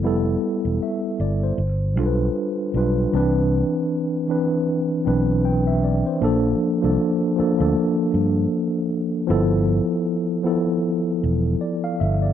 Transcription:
0.03 0.35 F1 medium
0.03 1.13 G3 medium
0.03 1.13 B3 medium
0.03 1.14 E4 medium
0.03 1.15 A4 loud
0.65 0.78 E1 medium
0.83 1.19 E5 medium
1.20 1.51 G1 medium
1.20 1.42 D5 medium
1.43 1.79 C5 medium
1.58 1.97 G1 medium
1.96 2.28 B1 medium
1.96 2.69 G3 medium
1.96 2.70 D4 medium
1.96 2.71 F4 medium
2.00 2.06 A4 medium
2.06 2.75 B4 medium
2.74 3.05 B1 medium
2.74 3.11 G3 medium
2.74 3.11 D4 medium
2.74 3.12 F4 medium
2.74 3.12 B4 medium
3.12 3.62 C2 medium
3.12 4.22 E3 medium
3.12 4.23 C4 medium
3.12 4.23 D4 medium
3.16 4.24 B4 loud
4.28 5.01 E3 medium
4.28 5.02 C4 medium
4.28 5.02 D4 medium
4.28 5.03 B4 medium
5.04 6.02 B1 medium
5.04 6.15 E3 medium
5.04 6.15 C4 medium
5.04 6.16 D4 medium
5.04 5.46 B4 medium
5.45 5.66 G5 medium
5.67 5.83 E5 medium
5.84 6.05 D5 medium
6.07 6.43 C5 medium
6.21 6.53 A#1 medium
6.21 6.78 F3 medium
6.21 6.78 A#3 medium
6.21 6.79 D4 medium
6.21 6.80 A4 loud
6.82 6.96 C2 medium
6.82 7.34 F3 medium
6.82 7.34 A#3 medium
6.82 7.35 D4 medium
6.82 7.36 A4 medium
7.36 7.56 F3 medium
7.36 7.58 A#3 medium
7.36 7.59 D4 medium
7.36 7.60 A4 medium
7.36 muted fingered electric bass stroke soft
7.57 7.73 D2 medium
7.57 9.01 F3 medium
7.57 9.02 A#3 medium
7.57 9.03 D4 medium
7.61 9.03 A4 medium
8.14 8.45 G2 medium
9.27 9.79 G1 loud
9.27 10.38 F3 loud
9.27 10.39 B3 medium
9.27 10.40 E4 medium
9.27 10.40 A4 loud
10.43 11.18 F3 medium
10.43 11.18 B3 medium
10.43 11.19 E4 medium
10.43 11.19 A4 medium
11.24 11.54 E1 medium
11.61 11.83 D5 medium
11.84 12.00 F5 medium
12.00 12.32 G1 medium
12.00 12.22 E5 medium
12.22 12.33 D5 medium

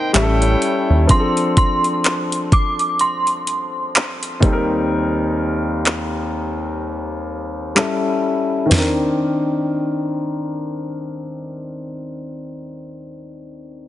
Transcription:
0.00 0.11 D#4 medium
0.00 0.11 A#4 medium
0.00 0.12 A#4 medium
0.00 0.11 D#5 medium
0.00 0.16 F5 medium
0.00 0.11 G5 medium
0.00 0.16 G5 medium
0.00 0.16 A5 medium
0.00 0.16 A#5 medium
0.13 0.55 A1 loud
0.13 1.09 G3 medium
0.13 1.09 C#4 medium
0.13 1.08 E4 medium
0.13 1.10 E4 medium
0.13 0.23 G4 medium
0.13 1.08 A4 medium
0.13 1.08 C#5 medium
0.13 0.40 E5 medium
0.13 1.08 G5 medium
0.13 clap loud
0.13 closed hi-hat medium
0.23 1.14 A4 medium
0.42 1.06 C#5 medium
0.42 closed hi-hat soft
0.62 closed hi-hat medium
0.90 1.07 D#2 medium
1.07 4.38 F3 medium
1.07 4.39 C4 medium
1.07 4.40 D4 medium
1.07 1.57 C6 medium
1.07 kick loud
1.07 closed hi-hat medium
1.13 1.19 G#4 medium
1.20 4.44 A4 medium
1.37 closed hi-hat soft
1.57 2.55 C6 loud
1.57 kick medium
1.57 closed hi-hat medium
1.84 closed hi-hat soft
2.04 clap loud
2.04 closed hi-hat medium
2.32 closed hi-hat medium
2.52 3.02 D6 loud
2.52 kick medium
2.52 closed hi-hat soft
2.79 closed hi-hat soft
2.99 7.72 C6 medium
2.99 closed hi-hat medium
3.27 closed hi-hat soft
3.47 closed hi-hat medium
3.95 clap loud
3.95 closed hi-hat medium
4.23 closed hi-hat soft
4.40 7.71 D#2 medium
4.40 7.72 G3 medium
4.40 7.72 C4 medium
4.40 kick loud
4.40 closed hi-hat medium
4.45 7.73 D#4 medium
4.45 4.52 A4 medium
4.53 7.77 A#4 medium
5.86 clap loud
7.75 8.71 G3 medium
7.75 8.71 C#4 medium
7.75 8.72 E4 medium
7.75 8.72 A4 medium
7.75 clap loud
8.66 11.79 D#3 medium
8.66 11.83 C4 medium
8.71 11.87 D4 medium
8.71 snare medium
8.71 floor tom medium
8.71 open hi-hat medium
8.78 11.91 A#4 medium

